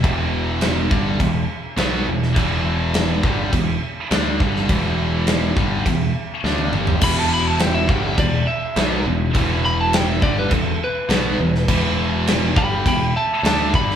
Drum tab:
CC |x---x---x---x---|x---x---x---x---|x---x---x-------|x---x---x---x---|
SD |----o-------o--o|----o-------o--o|----o-------o---|----o-------o---|
T1 |----------------|----------------|-------------o--|----------------|
T2 |----------------|----------------|--------------o-|----------------|
FT |----------------|----------------|---------------o|----------------|
BD |o-----o-o-------|o-----o-o-----o-|o-----o-o-------|o-----o-o-------|

CC |x---x---x---x---|x---x---x---x---|
SD |----o-------o--o|----o-------o--o|
T1 |----------------|----------------|
T2 |----------------|----------------|
FT |----------------|----------------|
BD |o-----o-o-------|o-----o-o-----o-|